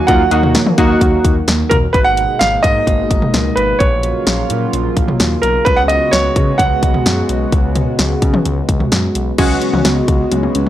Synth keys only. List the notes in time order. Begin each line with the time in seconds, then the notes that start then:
0.08 A#3 D#4 F4
0.32 A#3 D#4 F#4
0.78 A#3 D#4 F#4
9.38 G#3 C#4 F#4